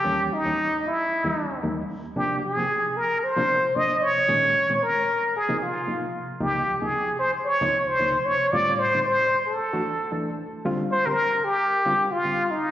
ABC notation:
X:1
M:4/4
L:1/16
Q:"Swing 16ths" 1/4=113
K:Eb
V:1 name="Muted trumpet"
G2 E4 _F6 z4 | G2 A4 B2 c4 e2 _d2- | _d4 B4 A2 F4 z2 | G3 A3 c2 _d3 c3 d2 |
d2 c2 c3 =A6 z3 | z2 c B3 G4- G F3 E2 |]
V:2 name="Reed electric piano"
[E,,_F,G,B,_D]2 z [E,,F,G,B,D] z [B,D] z3 [E,,F,G,B,_F] [B,D] z [E,,F,G,B,E] z [B,D] z | [C,F,B,D]2 z [C,F,B,C] [B,C] [B,E] z3 [C,F,B,D] [B,D] z [C,F,B,D] z [B,E] z | [B,,E,A,_D]2 z [B,,E,A,C] z [A,D] z3 [C,F,B,E] [B,E] z [C,F,B,E] z [B,E] z | [_D,,C,F,B,E]2 z [D,,C,F,B,E] [B,C] [B,E] z3 [D,,C,F,B,E] [B,E] z [D,,C,F,B,E] z [B,_D] z |
[=A,,D,G,CF]2 z [A,,D,G,CE] [CF] [CG] z3 [=E,=A,D^F] [DF] z [E,A,D=A] z [D=E] z | [D,G,CF]2 z [D,G,CG] z [CD] z3 [D,G,CF] [CD] z [D,G,CF] z [CF] z |]